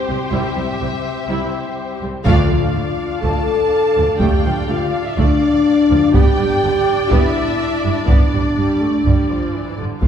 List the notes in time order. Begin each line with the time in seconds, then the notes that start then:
Already playing: G3 C4 G4 C5
0.08 C2 G3 C4
0.31 C2 G3 E4 E5
0.56 C2 G3 C4
0.80 C2 G3
1.28 C2 G3 E4
2.02 C2 G3 C4
2.25 D2 D3 A3 D4 F4 D5 F5, taiko
2.50 D2 F3
2.74 D2 D3
3.22 D2 A3 A4 A5, taiko
3.96 D2 F3
4.19 D2 A3 G4 G5, taiko
4.44 D2 F3
4.67 D2 D3 F4 F5
5.04 E4 E5
5.17 D2 A3 D4 D5, taiko
5.90 D2 F3
6.14 G1 G2 B3 D4 G4 D5 G5, taiko
6.39 G1 G2 G3
6.63 G1 G2 D3
7.10 G1 G2 B3 E4 E5, taiko
7.84 G1 G2 G3
8.08 G1 G2 B3 D4 D5, taiko
8.32 G1 G2 G3
8.56 G1 G2 G3
8.81 A3
9.05 G1 G2 G3, taiko
9.29 F3
9.53 E3
9.77 G1 G2 D3
10.01 D2 A3 D4 F4 D5 F5, taiko